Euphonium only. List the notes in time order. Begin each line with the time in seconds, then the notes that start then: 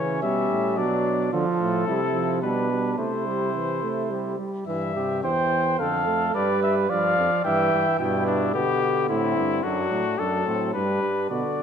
Already playing: C#3
0.23 B2
0.51 A2
0.78 B2
1.33 D3
1.60 A2
1.87 C3
2.43 B2
2.98 C3
4.68 G2
5.24 E2
5.79 F2
6.35 G2
6.90 G2
7.18 F2
7.45 G2
7.73 G2
8.00 G2
8.55 B2
9.10 A2
9.37 G2
9.64 F#2
9.92 A2
10.19 F#2
10.47 A2
10.75 G2
11.03 G2
11.31 B2
11.59 F#2